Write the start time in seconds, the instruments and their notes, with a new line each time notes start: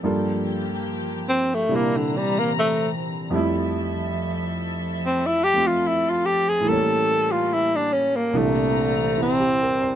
0.04 grand piano G2 G3 A#3 F4 A4, string section F3 A#3 G4
1.29 tenor saxophone C4
1.55 tenor saxophone A3
1.69 grand piano A#2 C3 G3 D4 E4, string section E3 C4 A#5
1.76 tenor saxophone A#3
1.97 tenor saxophone D3
2.18 tenor saxophone G3
2.39 tenor saxophone A#3
2.59 tenor saxophone A3
3.30 grand piano F2 F3 G3 A3, string section F3 A4 E5
3.35 grand piano E4
5.06 tenor saxophone C4
5.26 tenor saxophone E4
5.44 tenor saxophone G4
5.54 grand piano A3 C4 F4
5.67 tenor saxophone F4
5.88 tenor saxophone E4
6.10 tenor saxophone F4
6.26 tenor saxophone G4
6.49 tenor saxophone G#4
6.60 grand piano A2 E3
6.65 string section G3 A#3 C#4, grand piano G3 A#3
6.69 grand piano C#4, tenor saxophone A4
7.32 tenor saxophone F4
7.54 tenor saxophone E4
7.76 tenor saxophone D4
7.93 tenor saxophone C#4
8.16 tenor saxophone A#3
8.33 grand piano C2 A#2 C3 E3 D4, string section E3 C4 A#5
8.38 tenor saxophone A3
9.18 grand piano E4
9.23 tenor saxophone C4
9.40 grand piano G4
9.62 grand piano A#4
9.82 grand piano C5